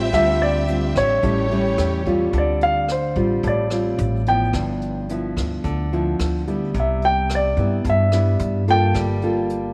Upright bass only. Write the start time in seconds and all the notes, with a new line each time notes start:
0.13 D2
0.96 A1
1.23 A1
1.78 E2
2.33 D2
3.16 A1
3.43 A1
3.98 A1
4.53 G1
5.37 D2
5.64 D2
6.19 D2
6.74 C2
7.57 G2
7.85 G2
8.40 G2
8.94 G1